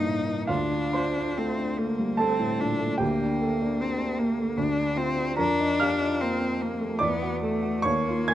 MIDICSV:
0, 0, Header, 1, 3, 480
1, 0, Start_track
1, 0, Tempo, 895522
1, 259, Time_signature, 3, 2, 24, 8
1, 734, Tempo, 820793
1, 1694, Tempo, 790514
1, 3134, Tempo, 818554
1, 4094, Tempo, 853485
1, 4837, End_track
2, 0, Start_track
2, 0, Title_t, "Grand piano"
2, 0, Program_c, 0, 0
2, 0, Control_c, 0, 64, 127
2, 0, Note_on_c, 0, 36, 48
2, 0, Note_on_c, 0, 43, 40
2, 0, Note_on_c, 0, 57, 30
2, 0, Note_on_c, 0, 58, 38
2, 0, Note_on_c, 0, 62, 37
2, 0, Note_on_c, 0, 63, 37
2, 0, Note_on_c, 0, 67, 33
2, 17, Note_on_c, 0, 45, 37
2, 87, Note_off_c, 0, 43, 0
2, 132, Note_off_c, 0, 58, 0
2, 132, Note_on_c, 0, 58, 36
2, 135, Note_off_c, 0, 45, 0
2, 236, Note_off_c, 0, 36, 0
2, 254, Note_on_c, 0, 77, 72
2, 259, Note_off_c, 0, 58, 0
2, 260, Note_on_c, 0, 65, 57
2, 264, Note_on_c, 0, 38, 53
2, 271, Control_c, 0, 64, 0
2, 272, Note_off_c, 0, 63, 0
2, 273, Note_off_c, 0, 57, 0
2, 273, Note_off_c, 0, 62, 0
2, 276, Note_off_c, 0, 67, 0
2, 370, Control_c, 0, 64, 127
2, 384, Note_on_c, 0, 62, 36
2, 490, Note_off_c, 0, 65, 0
2, 500, Note_on_c, 0, 84, 74
2, 504, Note_off_c, 0, 77, 0
2, 504, Note_on_c, 0, 72, 56
2, 506, Note_on_c, 0, 65, 40
2, 576, Note_off_c, 0, 62, 0
2, 628, Note_on_c, 0, 62, 39
2, 690, Note_off_c, 0, 65, 0
2, 741, Note_on_c, 0, 57, 44
2, 809, Note_off_c, 0, 62, 0
2, 857, Note_on_c, 0, 62, 39
2, 929, Note_off_c, 0, 57, 0
2, 975, Note_on_c, 0, 57, 38
2, 1046, Note_off_c, 0, 62, 0
2, 1097, Note_on_c, 0, 55, 35
2, 1165, Note_off_c, 0, 57, 0
2, 1187, Note_off_c, 0, 72, 0
2, 1204, Note_on_c, 0, 81, 76
2, 1208, Note_off_c, 0, 84, 0
2, 1211, Note_on_c, 0, 69, 58
2, 1214, Note_off_c, 0, 55, 0
2, 1216, Note_on_c, 0, 57, 39
2, 1334, Note_on_c, 0, 45, 39
2, 1406, Note_off_c, 0, 57, 0
2, 1449, Note_on_c, 0, 46, 37
2, 1526, Note_off_c, 0, 45, 0
2, 1569, Note_on_c, 0, 57, 39
2, 1572, Note_off_c, 0, 46, 0
2, 1670, Note_off_c, 0, 69, 0
2, 1673, Note_off_c, 0, 38, 0
2, 1674, Note_on_c, 0, 79, 72
2, 1682, Note_on_c, 0, 67, 58
2, 1685, Note_on_c, 0, 38, 54
2, 1690, Note_off_c, 0, 81, 0
2, 1692, Note_off_c, 0, 57, 0
2, 1703, Control_c, 0, 64, 0
2, 1814, Note_on_c, 0, 62, 39
2, 1816, Control_c, 0, 64, 127
2, 1938, Note_on_c, 0, 69, 45
2, 2007, Note_off_c, 0, 62, 0
2, 2061, Note_on_c, 0, 62, 42
2, 2126, Note_off_c, 0, 69, 0
2, 2173, Note_on_c, 0, 58, 39
2, 2244, Note_off_c, 0, 62, 0
2, 2282, Note_on_c, 0, 62, 40
2, 2358, Note_off_c, 0, 58, 0
2, 2406, Note_on_c, 0, 58, 41
2, 2472, Note_off_c, 0, 62, 0
2, 2530, Note_on_c, 0, 57, 35
2, 2593, Note_off_c, 0, 58, 0
2, 2611, Note_off_c, 0, 38, 0
2, 2643, Note_on_c, 0, 38, 55
2, 2644, Note_off_c, 0, 57, 0
2, 2648, Control_c, 0, 64, 0
2, 2753, Control_c, 0, 64, 127
2, 2758, Note_on_c, 0, 62, 40
2, 2849, Note_off_c, 0, 67, 0
2, 2870, Note_off_c, 0, 79, 0
2, 2879, Note_on_c, 0, 65, 47
2, 2953, Note_off_c, 0, 62, 0
2, 3003, Note_on_c, 0, 62, 40
2, 3081, Note_off_c, 0, 65, 0
2, 3122, Note_off_c, 0, 38, 0
2, 3124, Note_on_c, 0, 82, 81
2, 3132, Note_on_c, 0, 70, 57
2, 3134, Note_off_c, 0, 62, 0
2, 3137, Note_on_c, 0, 41, 56
2, 3144, Control_c, 0, 64, 0
2, 3263, Note_on_c, 0, 63, 45
2, 3265, Control_c, 0, 64, 127
2, 3366, Note_off_c, 0, 70, 0
2, 3377, Note_on_c, 0, 89, 85
2, 3380, Note_off_c, 0, 82, 0
2, 3383, Note_on_c, 0, 77, 60
2, 3386, Note_on_c, 0, 67, 43
2, 3459, Note_off_c, 0, 63, 0
2, 3501, Note_on_c, 0, 63, 40
2, 3578, Note_off_c, 0, 67, 0
2, 3619, Note_on_c, 0, 58, 47
2, 3692, Note_off_c, 0, 63, 0
2, 3729, Note_on_c, 0, 60, 44
2, 3809, Note_off_c, 0, 58, 0
2, 3852, Note_on_c, 0, 58, 40
2, 3923, Note_off_c, 0, 60, 0
2, 3969, Note_on_c, 0, 57, 40
2, 4044, Note_off_c, 0, 58, 0
2, 4070, Note_off_c, 0, 77, 0
2, 4072, Note_off_c, 0, 41, 0
2, 4075, Note_on_c, 0, 86, 89
2, 4082, Note_on_c, 0, 74, 62
2, 4089, Note_on_c, 0, 40, 58
2, 4090, Note_off_c, 0, 89, 0
2, 4091, Note_off_c, 0, 57, 0
2, 4103, Control_c, 0, 64, 0
2, 4188, Control_c, 0, 64, 127
2, 4210, Note_on_c, 0, 66, 46
2, 4320, Note_on_c, 0, 69, 45
2, 4395, Note_off_c, 0, 66, 0
2, 4434, Note_on_c, 0, 66, 42
2, 4515, Note_off_c, 0, 69, 0
2, 4539, Note_off_c, 0, 74, 0
2, 4546, Note_on_c, 0, 85, 93
2, 4550, Note_off_c, 0, 40, 0
2, 4557, Note_on_c, 0, 73, 69
2, 4558, Note_off_c, 0, 86, 0
2, 4560, Note_on_c, 0, 39, 58
2, 4563, Note_off_c, 0, 66, 0
2, 4578, Control_c, 0, 64, 0
2, 4674, Control_c, 0, 64, 127
2, 4692, Note_on_c, 0, 65, 45
2, 4791, Note_off_c, 0, 73, 0
2, 4802, Note_on_c, 0, 92, 90
2, 4803, Note_off_c, 0, 85, 0
2, 4809, Note_on_c, 0, 80, 65
2, 4815, Note_on_c, 0, 70, 44
2, 4837, Note_off_c, 0, 39, 0
2, 4837, Note_off_c, 0, 65, 0
2, 4837, Note_off_c, 0, 70, 0
2, 4837, Note_off_c, 0, 80, 0
2, 4837, Note_off_c, 0, 92, 0
2, 4837, End_track
3, 0, Start_track
3, 0, Title_t, "Cello"
3, 0, Program_c, 1, 42
3, 0, Note_on_c, 1, 63, 61
3, 265, Note_off_c, 1, 63, 0
3, 269, Note_on_c, 1, 62, 56
3, 738, Note_on_c, 1, 60, 52
3, 747, Note_off_c, 1, 62, 0
3, 981, Note_on_c, 1, 58, 51
3, 990, Note_off_c, 1, 60, 0
3, 1223, Note_on_c, 1, 60, 60
3, 1232, Note_off_c, 1, 58, 0
3, 1459, Note_on_c, 1, 62, 63
3, 1467, Note_off_c, 1, 60, 0
3, 1697, Note_off_c, 1, 62, 0
3, 1705, Note_on_c, 1, 58, 64
3, 2179, Note_on_c, 1, 60, 60
3, 2188, Note_off_c, 1, 58, 0
3, 2408, Note_on_c, 1, 58, 53
3, 2417, Note_off_c, 1, 60, 0
3, 2643, Note_on_c, 1, 62, 62
3, 2652, Note_off_c, 1, 58, 0
3, 2886, Note_on_c, 1, 60, 70
3, 2895, Note_off_c, 1, 62, 0
3, 3136, Note_off_c, 1, 60, 0
3, 3139, Note_on_c, 1, 62, 76
3, 3619, Note_on_c, 1, 60, 62
3, 3628, Note_off_c, 1, 62, 0
3, 3860, Note_on_c, 1, 58, 55
3, 3869, Note_off_c, 1, 60, 0
3, 4099, Note_on_c, 1, 59, 65
3, 4107, Note_off_c, 1, 58, 0
3, 4319, Note_off_c, 1, 59, 0
3, 4322, Note_on_c, 1, 57, 63
3, 4569, Note_on_c, 1, 58, 68
3, 4577, Note_off_c, 1, 57, 0
3, 4837, Note_off_c, 1, 58, 0
3, 4837, End_track
0, 0, End_of_file